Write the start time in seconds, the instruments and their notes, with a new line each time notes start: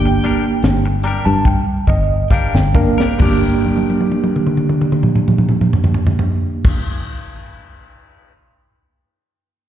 Already playing: fingered electric bass G1, tine electric piano A#3 D4 G4, overdriven electric guitar G5
0.05 muted clean electric guitar stroke
0.24 clean electric guitar G3 D4 G4 A#4
0.46 muted clean electric guitar stroke
0.62 fingered electric bass G1, snare, closed hi-hat
0.86 muted clean electric guitar stroke
1.04 clean electric guitar G3 D4 G4 A#4, tine electric piano A#5
1.25 fingered electric bass G2, tine electric piano A5, muted clean electric guitar stroke
1.45 tine electric piano G5, muted clean electric guitar stroke, kick
1.87 fingered electric bass G1, tine electric piano D#5, muted clean electric guitar stroke, kick
2.31 clean electric guitar G3 D4 G4 A#4, tine electric piano F5, kick
2.54 fingered electric bass G1, tine electric piano G5, muted clean electric guitar stroke, snare
2.74 tine electric piano A#3 D4 A#4 F5, muted clean electric guitar stroke, kick
2.98 clean electric guitar D4 G4 A#4, snare
3.18 fingered electric bass G1, clean electric guitar G3 D4, tine electric piano A#3 D4, kick, crash
3.22 tine electric piano G4, clean electric guitar G4 A#4
3.66 high tom
3.77 high tom
3.90 high tom
4.01 high tom
4.12 high tom
4.24 high tom
4.36 mid tom
4.47 mid tom
4.57 mid tom
4.69 mid tom
4.81 mid tom
4.92 mid tom
5.03 mid tom
5.15 mid tom
5.28 mid tom
5.38 mid tom
5.49 mid tom
5.61 mid tom
5.73 floor tom
5.84 floor tom
5.94 floor tom
6.07 floor tom
6.19 floor tom
6.65 kick, crash